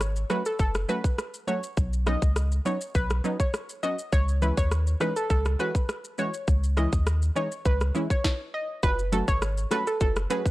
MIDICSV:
0, 0, Header, 1, 5, 480
1, 0, Start_track
1, 0, Tempo, 588235
1, 1447, Time_signature, 4, 2, 24, 8
1, 8575, End_track
2, 0, Start_track
2, 0, Title_t, "Synth pluck"
2, 0, Program_c, 0, 84
2, 249, Note_on_c, 0, 71, 84
2, 341, Note_off_c, 0, 71, 0
2, 377, Note_on_c, 0, 69, 79
2, 458, Note_off_c, 0, 69, 0
2, 489, Note_on_c, 0, 69, 81
2, 581, Note_off_c, 0, 69, 0
2, 727, Note_on_c, 0, 71, 94
2, 820, Note_off_c, 0, 71, 0
2, 1205, Note_on_c, 0, 73, 81
2, 1298, Note_off_c, 0, 73, 0
2, 1689, Note_on_c, 0, 75, 76
2, 1781, Note_off_c, 0, 75, 0
2, 2169, Note_on_c, 0, 73, 77
2, 2261, Note_off_c, 0, 73, 0
2, 2409, Note_on_c, 0, 71, 83
2, 2501, Note_off_c, 0, 71, 0
2, 2776, Note_on_c, 0, 73, 75
2, 2858, Note_off_c, 0, 73, 0
2, 3126, Note_on_c, 0, 75, 81
2, 3219, Note_off_c, 0, 75, 0
2, 3366, Note_on_c, 0, 73, 98
2, 3459, Note_off_c, 0, 73, 0
2, 3608, Note_on_c, 0, 71, 77
2, 3700, Note_off_c, 0, 71, 0
2, 3736, Note_on_c, 0, 73, 86
2, 3818, Note_off_c, 0, 73, 0
2, 4090, Note_on_c, 0, 71, 82
2, 4181, Note_off_c, 0, 71, 0
2, 4214, Note_on_c, 0, 69, 82
2, 4296, Note_off_c, 0, 69, 0
2, 4328, Note_on_c, 0, 69, 84
2, 4420, Note_off_c, 0, 69, 0
2, 4568, Note_on_c, 0, 71, 91
2, 4660, Note_off_c, 0, 71, 0
2, 5050, Note_on_c, 0, 73, 78
2, 5142, Note_off_c, 0, 73, 0
2, 5530, Note_on_c, 0, 75, 77
2, 5622, Note_off_c, 0, 75, 0
2, 6009, Note_on_c, 0, 73, 77
2, 6101, Note_off_c, 0, 73, 0
2, 6250, Note_on_c, 0, 71, 83
2, 6342, Note_off_c, 0, 71, 0
2, 6617, Note_on_c, 0, 73, 71
2, 6698, Note_off_c, 0, 73, 0
2, 6969, Note_on_c, 0, 75, 82
2, 7061, Note_off_c, 0, 75, 0
2, 7207, Note_on_c, 0, 71, 102
2, 7299, Note_off_c, 0, 71, 0
2, 7446, Note_on_c, 0, 69, 82
2, 7539, Note_off_c, 0, 69, 0
2, 7572, Note_on_c, 0, 73, 88
2, 7655, Note_off_c, 0, 73, 0
2, 7928, Note_on_c, 0, 71, 87
2, 8020, Note_off_c, 0, 71, 0
2, 8056, Note_on_c, 0, 69, 79
2, 8137, Note_off_c, 0, 69, 0
2, 8169, Note_on_c, 0, 69, 87
2, 8261, Note_off_c, 0, 69, 0
2, 8409, Note_on_c, 0, 71, 94
2, 8501, Note_off_c, 0, 71, 0
2, 8575, End_track
3, 0, Start_track
3, 0, Title_t, "Synth stab"
3, 0, Program_c, 1, 62
3, 243, Note_on_c, 1, 54, 75
3, 246, Note_on_c, 1, 57, 71
3, 249, Note_on_c, 1, 61, 70
3, 252, Note_on_c, 1, 66, 83
3, 347, Note_off_c, 1, 54, 0
3, 348, Note_off_c, 1, 57, 0
3, 350, Note_off_c, 1, 61, 0
3, 351, Note_off_c, 1, 66, 0
3, 723, Note_on_c, 1, 54, 79
3, 726, Note_on_c, 1, 57, 71
3, 729, Note_on_c, 1, 61, 70
3, 734, Note_on_c, 1, 66, 86
3, 827, Note_off_c, 1, 54, 0
3, 828, Note_off_c, 1, 57, 0
3, 830, Note_off_c, 1, 61, 0
3, 832, Note_off_c, 1, 66, 0
3, 1203, Note_on_c, 1, 54, 70
3, 1207, Note_on_c, 1, 57, 68
3, 1209, Note_on_c, 1, 61, 66
3, 1213, Note_on_c, 1, 66, 77
3, 1306, Note_off_c, 1, 54, 0
3, 1309, Note_off_c, 1, 57, 0
3, 1310, Note_off_c, 1, 61, 0
3, 1312, Note_off_c, 1, 66, 0
3, 1684, Note_on_c, 1, 54, 75
3, 1686, Note_on_c, 1, 59, 67
3, 1690, Note_on_c, 1, 61, 65
3, 1693, Note_on_c, 1, 63, 84
3, 1787, Note_off_c, 1, 54, 0
3, 1788, Note_off_c, 1, 59, 0
3, 1790, Note_off_c, 1, 61, 0
3, 1792, Note_off_c, 1, 63, 0
3, 2164, Note_on_c, 1, 54, 73
3, 2168, Note_on_c, 1, 59, 72
3, 2170, Note_on_c, 1, 61, 67
3, 2174, Note_on_c, 1, 63, 85
3, 2267, Note_off_c, 1, 54, 0
3, 2269, Note_off_c, 1, 59, 0
3, 2270, Note_off_c, 1, 61, 0
3, 2272, Note_off_c, 1, 63, 0
3, 2645, Note_on_c, 1, 54, 79
3, 2650, Note_on_c, 1, 59, 74
3, 2653, Note_on_c, 1, 61, 70
3, 2656, Note_on_c, 1, 63, 84
3, 2748, Note_off_c, 1, 54, 0
3, 2750, Note_off_c, 1, 59, 0
3, 2752, Note_off_c, 1, 61, 0
3, 2753, Note_off_c, 1, 63, 0
3, 3126, Note_on_c, 1, 54, 72
3, 3130, Note_on_c, 1, 59, 66
3, 3133, Note_on_c, 1, 61, 68
3, 3136, Note_on_c, 1, 66, 77
3, 3228, Note_off_c, 1, 54, 0
3, 3230, Note_off_c, 1, 59, 0
3, 3232, Note_off_c, 1, 61, 0
3, 3233, Note_off_c, 1, 66, 0
3, 3605, Note_on_c, 1, 52, 75
3, 3609, Note_on_c, 1, 56, 70
3, 3613, Note_on_c, 1, 61, 66
3, 3615, Note_on_c, 1, 64, 81
3, 3708, Note_off_c, 1, 52, 0
3, 3709, Note_off_c, 1, 56, 0
3, 3711, Note_off_c, 1, 61, 0
3, 3713, Note_off_c, 1, 64, 0
3, 4082, Note_on_c, 1, 52, 77
3, 4087, Note_on_c, 1, 56, 68
3, 4090, Note_on_c, 1, 61, 69
3, 4093, Note_on_c, 1, 63, 88
3, 4186, Note_off_c, 1, 52, 0
3, 4189, Note_off_c, 1, 56, 0
3, 4190, Note_off_c, 1, 61, 0
3, 4192, Note_off_c, 1, 63, 0
3, 4563, Note_on_c, 1, 52, 76
3, 4565, Note_on_c, 1, 56, 70
3, 4569, Note_on_c, 1, 61, 73
3, 4572, Note_on_c, 1, 66, 85
3, 4667, Note_off_c, 1, 52, 0
3, 4668, Note_off_c, 1, 56, 0
3, 4669, Note_off_c, 1, 61, 0
3, 4671, Note_off_c, 1, 66, 0
3, 5043, Note_on_c, 1, 52, 76
3, 5046, Note_on_c, 1, 56, 68
3, 5049, Note_on_c, 1, 61, 69
3, 5052, Note_on_c, 1, 66, 82
3, 5147, Note_off_c, 1, 52, 0
3, 5148, Note_off_c, 1, 56, 0
3, 5150, Note_off_c, 1, 61, 0
3, 5151, Note_off_c, 1, 66, 0
3, 5523, Note_on_c, 1, 52, 73
3, 5526, Note_on_c, 1, 56, 68
3, 5530, Note_on_c, 1, 61, 70
3, 5533, Note_on_c, 1, 64, 80
3, 5627, Note_off_c, 1, 52, 0
3, 5628, Note_off_c, 1, 56, 0
3, 5630, Note_off_c, 1, 61, 0
3, 5632, Note_off_c, 1, 64, 0
3, 6002, Note_on_c, 1, 52, 79
3, 6006, Note_on_c, 1, 56, 69
3, 6008, Note_on_c, 1, 61, 71
3, 6012, Note_on_c, 1, 63, 81
3, 6106, Note_off_c, 1, 52, 0
3, 6108, Note_off_c, 1, 56, 0
3, 6109, Note_off_c, 1, 61, 0
3, 6111, Note_off_c, 1, 63, 0
3, 6485, Note_on_c, 1, 52, 90
3, 6487, Note_on_c, 1, 56, 82
3, 6491, Note_on_c, 1, 61, 87
3, 6494, Note_on_c, 1, 64, 97
3, 6587, Note_off_c, 1, 52, 0
3, 6589, Note_off_c, 1, 56, 0
3, 6591, Note_off_c, 1, 61, 0
3, 6592, Note_off_c, 1, 64, 0
3, 7444, Note_on_c, 1, 54, 75
3, 7446, Note_on_c, 1, 57, 72
3, 7448, Note_on_c, 1, 61, 66
3, 7450, Note_on_c, 1, 66, 73
3, 7453, Note_on_c, 1, 69, 86
3, 7547, Note_off_c, 1, 54, 0
3, 7548, Note_off_c, 1, 57, 0
3, 7549, Note_off_c, 1, 61, 0
3, 7550, Note_off_c, 1, 66, 0
3, 7552, Note_off_c, 1, 69, 0
3, 7924, Note_on_c, 1, 54, 74
3, 7926, Note_on_c, 1, 57, 71
3, 7928, Note_on_c, 1, 61, 71
3, 7931, Note_on_c, 1, 66, 71
3, 7933, Note_on_c, 1, 69, 87
3, 8027, Note_off_c, 1, 54, 0
3, 8028, Note_off_c, 1, 57, 0
3, 8029, Note_off_c, 1, 61, 0
3, 8031, Note_off_c, 1, 66, 0
3, 8032, Note_off_c, 1, 69, 0
3, 8403, Note_on_c, 1, 54, 81
3, 8406, Note_on_c, 1, 57, 74
3, 8408, Note_on_c, 1, 61, 70
3, 8411, Note_on_c, 1, 66, 76
3, 8414, Note_on_c, 1, 68, 87
3, 8507, Note_off_c, 1, 54, 0
3, 8508, Note_off_c, 1, 57, 0
3, 8509, Note_off_c, 1, 61, 0
3, 8511, Note_off_c, 1, 66, 0
3, 8512, Note_off_c, 1, 68, 0
3, 8575, End_track
4, 0, Start_track
4, 0, Title_t, "Sub bass"
4, 0, Program_c, 2, 38
4, 0, Note_on_c, 2, 32, 94
4, 200, Note_off_c, 2, 32, 0
4, 486, Note_on_c, 2, 30, 102
4, 695, Note_off_c, 2, 30, 0
4, 1447, Note_on_c, 2, 35, 105
4, 1767, Note_off_c, 2, 35, 0
4, 1813, Note_on_c, 2, 37, 84
4, 2121, Note_off_c, 2, 37, 0
4, 2406, Note_on_c, 2, 35, 98
4, 2616, Note_off_c, 2, 35, 0
4, 3367, Note_on_c, 2, 37, 108
4, 3687, Note_off_c, 2, 37, 0
4, 3733, Note_on_c, 2, 39, 83
4, 4041, Note_off_c, 2, 39, 0
4, 4327, Note_on_c, 2, 37, 103
4, 4536, Note_off_c, 2, 37, 0
4, 5286, Note_on_c, 2, 37, 106
4, 5606, Note_off_c, 2, 37, 0
4, 5652, Note_on_c, 2, 39, 91
4, 5960, Note_off_c, 2, 39, 0
4, 6246, Note_on_c, 2, 37, 98
4, 6456, Note_off_c, 2, 37, 0
4, 7207, Note_on_c, 2, 30, 115
4, 7527, Note_off_c, 2, 30, 0
4, 7572, Note_on_c, 2, 32, 91
4, 7881, Note_off_c, 2, 32, 0
4, 8166, Note_on_c, 2, 30, 105
4, 8376, Note_off_c, 2, 30, 0
4, 8575, End_track
5, 0, Start_track
5, 0, Title_t, "Drums"
5, 5, Note_on_c, 9, 37, 91
5, 6, Note_on_c, 9, 82, 77
5, 87, Note_off_c, 9, 37, 0
5, 88, Note_off_c, 9, 82, 0
5, 132, Note_on_c, 9, 82, 53
5, 214, Note_off_c, 9, 82, 0
5, 245, Note_on_c, 9, 37, 89
5, 245, Note_on_c, 9, 82, 51
5, 327, Note_off_c, 9, 37, 0
5, 327, Note_off_c, 9, 82, 0
5, 372, Note_on_c, 9, 82, 88
5, 454, Note_off_c, 9, 82, 0
5, 484, Note_on_c, 9, 82, 59
5, 485, Note_on_c, 9, 36, 98
5, 565, Note_off_c, 9, 82, 0
5, 567, Note_off_c, 9, 36, 0
5, 610, Note_on_c, 9, 82, 49
5, 613, Note_on_c, 9, 37, 91
5, 692, Note_off_c, 9, 82, 0
5, 694, Note_off_c, 9, 37, 0
5, 727, Note_on_c, 9, 82, 50
5, 808, Note_off_c, 9, 82, 0
5, 851, Note_on_c, 9, 36, 90
5, 854, Note_on_c, 9, 82, 72
5, 933, Note_off_c, 9, 36, 0
5, 936, Note_off_c, 9, 82, 0
5, 967, Note_on_c, 9, 37, 93
5, 968, Note_on_c, 9, 82, 69
5, 1048, Note_off_c, 9, 37, 0
5, 1049, Note_off_c, 9, 82, 0
5, 1094, Note_on_c, 9, 82, 55
5, 1175, Note_off_c, 9, 82, 0
5, 1207, Note_on_c, 9, 82, 58
5, 1288, Note_off_c, 9, 82, 0
5, 1333, Note_on_c, 9, 82, 72
5, 1415, Note_off_c, 9, 82, 0
5, 1447, Note_on_c, 9, 36, 109
5, 1447, Note_on_c, 9, 82, 72
5, 1528, Note_off_c, 9, 36, 0
5, 1528, Note_off_c, 9, 82, 0
5, 1576, Note_on_c, 9, 82, 49
5, 1658, Note_off_c, 9, 82, 0
5, 1687, Note_on_c, 9, 37, 90
5, 1687, Note_on_c, 9, 82, 50
5, 1768, Note_off_c, 9, 82, 0
5, 1769, Note_off_c, 9, 37, 0
5, 1813, Note_on_c, 9, 36, 93
5, 1813, Note_on_c, 9, 82, 73
5, 1894, Note_off_c, 9, 36, 0
5, 1895, Note_off_c, 9, 82, 0
5, 1926, Note_on_c, 9, 37, 94
5, 1927, Note_on_c, 9, 82, 79
5, 2008, Note_off_c, 9, 37, 0
5, 2009, Note_off_c, 9, 82, 0
5, 2055, Note_on_c, 9, 82, 52
5, 2137, Note_off_c, 9, 82, 0
5, 2167, Note_on_c, 9, 82, 50
5, 2249, Note_off_c, 9, 82, 0
5, 2294, Note_on_c, 9, 82, 89
5, 2375, Note_off_c, 9, 82, 0
5, 2405, Note_on_c, 9, 82, 62
5, 2406, Note_on_c, 9, 36, 98
5, 2487, Note_off_c, 9, 82, 0
5, 2488, Note_off_c, 9, 36, 0
5, 2531, Note_on_c, 9, 82, 50
5, 2534, Note_on_c, 9, 37, 91
5, 2613, Note_off_c, 9, 82, 0
5, 2616, Note_off_c, 9, 37, 0
5, 2647, Note_on_c, 9, 82, 50
5, 2729, Note_off_c, 9, 82, 0
5, 2772, Note_on_c, 9, 36, 88
5, 2775, Note_on_c, 9, 82, 73
5, 2853, Note_off_c, 9, 36, 0
5, 2857, Note_off_c, 9, 82, 0
5, 2887, Note_on_c, 9, 37, 91
5, 2888, Note_on_c, 9, 82, 66
5, 2969, Note_off_c, 9, 37, 0
5, 2970, Note_off_c, 9, 82, 0
5, 3014, Note_on_c, 9, 82, 55
5, 3096, Note_off_c, 9, 82, 0
5, 3127, Note_on_c, 9, 82, 57
5, 3209, Note_off_c, 9, 82, 0
5, 3254, Note_on_c, 9, 82, 77
5, 3336, Note_off_c, 9, 82, 0
5, 3367, Note_on_c, 9, 36, 113
5, 3367, Note_on_c, 9, 82, 75
5, 3448, Note_off_c, 9, 36, 0
5, 3449, Note_off_c, 9, 82, 0
5, 3497, Note_on_c, 9, 82, 50
5, 3579, Note_off_c, 9, 82, 0
5, 3608, Note_on_c, 9, 82, 52
5, 3690, Note_off_c, 9, 82, 0
5, 3733, Note_on_c, 9, 36, 93
5, 3734, Note_on_c, 9, 82, 73
5, 3815, Note_off_c, 9, 36, 0
5, 3815, Note_off_c, 9, 82, 0
5, 3848, Note_on_c, 9, 37, 90
5, 3848, Note_on_c, 9, 82, 78
5, 3929, Note_off_c, 9, 37, 0
5, 3930, Note_off_c, 9, 82, 0
5, 3975, Note_on_c, 9, 82, 53
5, 4057, Note_off_c, 9, 82, 0
5, 4086, Note_on_c, 9, 37, 87
5, 4086, Note_on_c, 9, 82, 53
5, 4168, Note_off_c, 9, 37, 0
5, 4168, Note_off_c, 9, 82, 0
5, 4214, Note_on_c, 9, 82, 89
5, 4296, Note_off_c, 9, 82, 0
5, 4326, Note_on_c, 9, 36, 97
5, 4326, Note_on_c, 9, 82, 61
5, 4408, Note_off_c, 9, 36, 0
5, 4408, Note_off_c, 9, 82, 0
5, 4451, Note_on_c, 9, 82, 48
5, 4454, Note_on_c, 9, 37, 91
5, 4533, Note_off_c, 9, 82, 0
5, 4535, Note_off_c, 9, 37, 0
5, 4567, Note_on_c, 9, 82, 50
5, 4649, Note_off_c, 9, 82, 0
5, 4691, Note_on_c, 9, 36, 88
5, 4695, Note_on_c, 9, 82, 69
5, 4773, Note_off_c, 9, 36, 0
5, 4776, Note_off_c, 9, 82, 0
5, 4806, Note_on_c, 9, 37, 88
5, 4807, Note_on_c, 9, 82, 66
5, 4888, Note_off_c, 9, 37, 0
5, 4889, Note_off_c, 9, 82, 0
5, 4933, Note_on_c, 9, 82, 56
5, 5015, Note_off_c, 9, 82, 0
5, 5046, Note_on_c, 9, 82, 56
5, 5127, Note_off_c, 9, 82, 0
5, 5173, Note_on_c, 9, 82, 75
5, 5255, Note_off_c, 9, 82, 0
5, 5286, Note_on_c, 9, 36, 115
5, 5286, Note_on_c, 9, 82, 71
5, 5368, Note_off_c, 9, 36, 0
5, 5368, Note_off_c, 9, 82, 0
5, 5416, Note_on_c, 9, 82, 50
5, 5497, Note_off_c, 9, 82, 0
5, 5526, Note_on_c, 9, 82, 51
5, 5527, Note_on_c, 9, 37, 86
5, 5608, Note_off_c, 9, 37, 0
5, 5608, Note_off_c, 9, 82, 0
5, 5653, Note_on_c, 9, 36, 94
5, 5653, Note_on_c, 9, 82, 74
5, 5734, Note_off_c, 9, 36, 0
5, 5735, Note_off_c, 9, 82, 0
5, 5767, Note_on_c, 9, 37, 96
5, 5768, Note_on_c, 9, 82, 75
5, 5849, Note_off_c, 9, 37, 0
5, 5849, Note_off_c, 9, 82, 0
5, 5895, Note_on_c, 9, 82, 52
5, 5976, Note_off_c, 9, 82, 0
5, 6008, Note_on_c, 9, 82, 51
5, 6089, Note_off_c, 9, 82, 0
5, 6135, Note_on_c, 9, 82, 88
5, 6217, Note_off_c, 9, 82, 0
5, 6246, Note_on_c, 9, 36, 97
5, 6246, Note_on_c, 9, 82, 62
5, 6327, Note_off_c, 9, 82, 0
5, 6328, Note_off_c, 9, 36, 0
5, 6372, Note_on_c, 9, 82, 49
5, 6375, Note_on_c, 9, 37, 91
5, 6454, Note_off_c, 9, 82, 0
5, 6456, Note_off_c, 9, 37, 0
5, 6488, Note_on_c, 9, 82, 48
5, 6569, Note_off_c, 9, 82, 0
5, 6612, Note_on_c, 9, 36, 93
5, 6617, Note_on_c, 9, 82, 72
5, 6694, Note_off_c, 9, 36, 0
5, 6698, Note_off_c, 9, 82, 0
5, 6727, Note_on_c, 9, 36, 107
5, 6728, Note_on_c, 9, 38, 88
5, 6809, Note_off_c, 9, 36, 0
5, 6809, Note_off_c, 9, 38, 0
5, 7207, Note_on_c, 9, 36, 117
5, 7207, Note_on_c, 9, 82, 79
5, 7210, Note_on_c, 9, 60, 81
5, 7289, Note_off_c, 9, 36, 0
5, 7289, Note_off_c, 9, 82, 0
5, 7291, Note_off_c, 9, 60, 0
5, 7336, Note_on_c, 9, 82, 51
5, 7418, Note_off_c, 9, 82, 0
5, 7447, Note_on_c, 9, 42, 73
5, 7447, Note_on_c, 9, 82, 53
5, 7529, Note_off_c, 9, 42, 0
5, 7529, Note_off_c, 9, 82, 0
5, 7573, Note_on_c, 9, 36, 94
5, 7573, Note_on_c, 9, 82, 80
5, 7654, Note_off_c, 9, 36, 0
5, 7655, Note_off_c, 9, 82, 0
5, 7687, Note_on_c, 9, 37, 97
5, 7687, Note_on_c, 9, 82, 78
5, 7768, Note_off_c, 9, 37, 0
5, 7769, Note_off_c, 9, 82, 0
5, 7814, Note_on_c, 9, 82, 54
5, 7896, Note_off_c, 9, 82, 0
5, 7921, Note_on_c, 9, 60, 74
5, 7926, Note_on_c, 9, 37, 89
5, 7926, Note_on_c, 9, 42, 73
5, 7926, Note_on_c, 9, 82, 54
5, 8002, Note_off_c, 9, 60, 0
5, 8008, Note_off_c, 9, 37, 0
5, 8008, Note_off_c, 9, 42, 0
5, 8008, Note_off_c, 9, 82, 0
5, 8054, Note_on_c, 9, 82, 89
5, 8136, Note_off_c, 9, 82, 0
5, 8165, Note_on_c, 9, 82, 62
5, 8166, Note_on_c, 9, 36, 100
5, 8170, Note_on_c, 9, 60, 74
5, 8247, Note_off_c, 9, 82, 0
5, 8248, Note_off_c, 9, 36, 0
5, 8251, Note_off_c, 9, 60, 0
5, 8292, Note_on_c, 9, 82, 53
5, 8295, Note_on_c, 9, 37, 90
5, 8374, Note_off_c, 9, 82, 0
5, 8376, Note_off_c, 9, 37, 0
5, 8408, Note_on_c, 9, 42, 71
5, 8408, Note_on_c, 9, 82, 51
5, 8490, Note_off_c, 9, 42, 0
5, 8490, Note_off_c, 9, 82, 0
5, 8532, Note_on_c, 9, 36, 96
5, 8536, Note_on_c, 9, 82, 71
5, 8575, Note_off_c, 9, 36, 0
5, 8575, Note_off_c, 9, 82, 0
5, 8575, End_track
0, 0, End_of_file